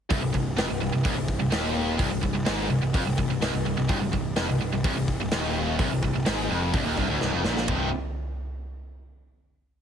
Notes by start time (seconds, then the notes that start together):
0.10 C1 C2, kick, open hi-hat
0.22 C1 C2
0.32 C1 C2, kick
0.57 F1 F2, snare, open hi-hat
0.68 C1 C2
0.80 C1 C2
0.92 C1 C2
1.04 C1 C2, kick, open hi-hat
1.16 C1 C2
1.28 kick
1.39 C1 C2
1.51 D#1 D#2, snare, open hi-hat
1.98 C1 C2, kick, open hi-hat
2.10 C1 C2
2.21 C1 C2, kick
2.33 C1 C2
2.45 G#1 G#2, snare, open hi-hat
2.70 C1 C2
2.82 C1 C2
2.94 F1 F2, kick, open hi-hat
3.05 C1 C2
3.18 C1 C2, kick
3.29 C1 C2
3.41 C1 C2, snare, open hi-hat
3.53 C1 C2
3.66 C1 C2
3.77 C1 C2
3.88 C1 C2, kick, open hi-hat
4.01 C1 C2
4.12 C1 C2, kick
4.36 F1 F2, snare, open hi-hat
4.49 C1 C2
4.61 C1 C2
4.73 C1 C2
4.84 C1 C2, kick, open hi-hat
4.97 C1 C2
5.08 kick
5.20 C1 C2
5.31 D#1 D#2, snare, open hi-hat
5.79 C1 C2, kick, open hi-hat
5.90 C1 C2
6.03 C1 C2, kick
6.14 C1 C2
6.25 G#1 G#2, snare, open hi-hat
6.49 F1 F2
6.73 C1 C2, kick, open hi-hat
6.85 D#1 D#2
6.97 C1 C2, kick
7.10 D1 D2
7.21 C1 C2, snare
7.33 F1 F2
7.44 A#1 A#2, snare
7.57 snare
7.68 C1 C2 G2 C3 G3 D#4, kick, floor tom, ride bell